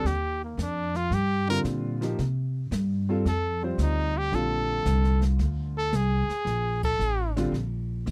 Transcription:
0.04 upright bass D#2, trumpet G4, brush sweep, snare
0.44 trumpet A#3
0.57 upright bass F2, snare, hi-hat pedal
0.62 trumpet D4
0.95 trumpet F4, snare
1.10 upright bass G2, trumpet G4, brush sweep, snare
1.48 grand piano D3 G3 C4 F4, trumpet A#4
1.64 upright bass A#2, snare, hi-hat pedal
2.01 grand piano F3 A#3 D#4 G4, snare
2.19 upright bass C3, brush sweep, snare
2.71 upright bass G2, snare, hi-hat pedal
3.09 grand piano G3 C4 F4 A4
3.25 upright bass F2, trumpet A4, brush sweep, snare
3.62 grand piano G3 C4 F4 C5, trumpet C4
3.78 upright bass D2, snare, hi-hat pedal
3.82 trumpet D#4
4.18 trumpet G4
4.32 upright bass A#1, grand piano D3 G3 C4 F4, trumpet A4, brush sweep, snare
4.85 upright bass C2, snare, hi-hat pedal
5.04 snare
5.22 snare
5.39 upright bass D2, brush sweep, snare
5.78 trumpet A4
5.92 upright bass C2, trumpet G#4, snare, hi-hat pedal
6.29 muted upright bass stroke, snare
6.45 upright bass A#1, brush sweep, snare
6.83 trumpet A4, kick, ride
6.99 upright bass A1, hi-hat pedal
7.36 grand piano D3 G3 C4 F4, snare
7.52 upright bass A#1, brush sweep, snare
8.06 upright bass D2, hi-hat pedal, high tom

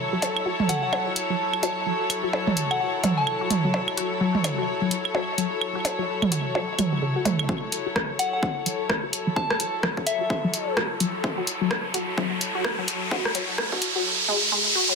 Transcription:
Already playing: string section F#3 E4 A4 C#5, synth texture A4
0.13 synth pluck F#3
0.22 closed hi-hat, percussion blips
0.36 claves
0.46 synth pluck F#4
0.60 mid tom
0.69 synth pluck F#3, synth bell F#5, closed hi-hat
0.83 synth bell F#5
0.93 percussion blips, claves
1.07 synth pluck F#4
1.16 closed hi-hat
1.30 synth pluck F#3
1.53 claves
1.63 synth pluck F#4, synth bell A5, closed hi-hat, percussion blips
1.86 synth pluck F#3
2.10 closed hi-hat, claves
2.24 synth pluck F#4
2.33 percussion blips
2.47 synth pluck F#3, mid tom
2.57 closed hi-hat
2.71 synth bell F#5, claves
2.80 synth pluck F#4
3.04 synth pluck F#3, closed hi-hat, mid tom, percussion blips
3.17 synth bell A5
3.27 claves
3.41 synth pluck F#4
3.50 closed hi-hat, mid tom
3.65 synth pluck F#3
3.74 percussion blips
3.88 claves
3.97 synth pluck F#4, closed hi-hat
4.21 synth pluck F#3
4.35 mid tom
4.44 closed hi-hat, percussion blips, claves
4.58 synth pluck F#4
4.82 synth pluck F#3
4.91 closed hi-hat
5.05 claves
5.14 synth pluck F#4, percussion blips
5.38 synth pluck F#3, closed hi-hat
5.61 claves
5.75 synth pluck F#4
5.85 closed hi-hat, percussion blips
5.99 synth pluck F#3
6.22 mid tom, claves
6.32 synth pluck F#4, closed hi-hat
6.55 synth pluck F#3, percussion blips
6.78 synth pluck F#3, closed hi-hat, mid tom, claves
6.93 synth pluck F#3
7.02 synth pluck C#3
7.16 synth pluck F#4
7.25 synth pluck A3, closed hi-hat, mid tom, percussion blips
7.39 claves
7.49 synth pluck F#3, synth texture A4, kick, riser
7.72 closed hi-hat
7.86 synth pluck F#4
7.96 kick, cross-stick
8.10 synth pluck F#3
8.19 synth bell F#5, closed hi-hat
8.33 synth bell F#5
8.42 synth pluck F#4, kick
8.66 synth pluck F#3, closed hi-hat
8.90 kick, cross-stick
9.03 synth pluck F#4
9.13 closed hi-hat
9.27 synth pluck F#3
9.36 synth bell A5, kick
9.50 synth bell A5, cross-stick
9.60 synth pluck F#4, closed hi-hat
9.83 synth pluck F#3, kick, cross-stick
9.97 kick
10.06 synth bell E5, closed hi-hat
10.21 synth pluck F#4
10.30 kick
10.44 synth pluck F#3
10.54 closed hi-hat
10.77 synth pluck F#4, kick, cross-stick
11.00 synth pluck F#3, closed hi-hat
11.24 kick
11.38 synth pluck F#4
11.47 closed hi-hat
11.61 synth pluck F#3
11.71 kick, cross-stick
11.94 synth pluck F#4, closed hi-hat
12.17 synth pluck F#3, kick
12.41 closed hi-hat
12.55 synth pluck F#4
12.64 kick, cross-stick
12.78 synth pluck F#3
12.88 closed hi-hat
13.11 synth pluck F#4, kick
13.25 cross-stick
13.35 synth pluck F#3, closed hi-hat
13.58 kick, cross-stick
13.72 synth pluck F#4, kick
13.82 closed hi-hat
13.96 synth pluck F#3
14.28 synth pluck G#3
14.52 synth pluck G#3
14.75 synth pluck F#4
14.89 synth pluck F#3

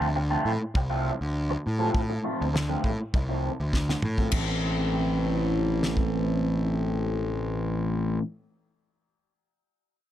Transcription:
0.01 picked electric bass D2
0.16 muted overdriven electric guitar stroke
0.31 overdriven electric guitar F3 A3 C4 F4
0.45 picked electric bass A2
0.75 picked electric bass C2, muted overdriven electric guitar stroke, kick
0.90 overdriven electric guitar F3 A3 C4 F4
1.21 picked electric bass D2
1.50 muted overdriven electric guitar stroke
1.67 picked electric bass A2
1.79 overdriven electric guitar F3 A3 C4 F4
1.94 picked electric bass A2, kick
2.09 muted overdriven electric guitar stroke
2.24 overdriven electric guitar F3 A3 C4 F4
2.41 picked electric bass D2
2.54 muted overdriven electric guitar stroke, snare
2.69 overdriven electric guitar F3 A3 C4 F4
2.84 picked electric bass A2, kick
3.14 picked electric bass C2, muted overdriven electric guitar stroke, kick
3.29 overdriven electric guitar F3 A3 C4 F4
3.60 picked electric bass D2
3.73 kick, snare
3.89 muted overdriven electric guitar stroke, snare
4.02 picked electric bass A2, mid tom
4.18 overdriven electric guitar F3 A3 C4 F4, kick
4.32 picked electric bass A1, overdriven electric guitar A2 E3 C4, kick, crash
4.36 overdriven electric guitar E4 A4
5.83 snare
5.97 kick

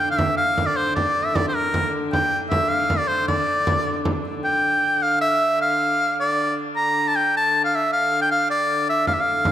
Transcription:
Already playing: hurdy-gurdy D3, shawm G5
0.11 shawm F5
0.19 shawm E5, frame drum
0.37 shawm F5, frame drum
0.58 frame drum
0.66 shawm D5
0.76 shawm C5
0.95 shawm D5, frame drum
1.25 shawm E5
1.35 shawm D5, frame drum
1.48 shawm C5
1.55 shawm A#4, frame drum
1.74 frame drum
2.13 shawm G5, frame drum
2.50 shawm E5, frame drum
2.69 shawm F5, frame drum
2.90 frame drum
2.98 shawm D5
3.08 shawm C5
3.28 shawm D5, frame drum
3.67 frame drum
4.05 frame drum
4.25 frame drum
4.44 hurdy-gurdy D3, shawm G5
5.02 shawm F5
5.21 shawm E5
5.61 shawm F5
6.20 shawm D5
6.76 shawm A#5
7.08 shawm A5
7.16 shawm G5
7.37 shawm A5
7.65 shawm F5
7.75 shawm E5
7.93 shawm F5
8.22 shawm G5
8.31 shawm F5
8.51 shawm D5
8.90 shawm E5
9.07 hurdy-gurdy D3, shawm F5, frame drum
9.14 shawm E5
9.21 shawm F5
9.45 frame drum

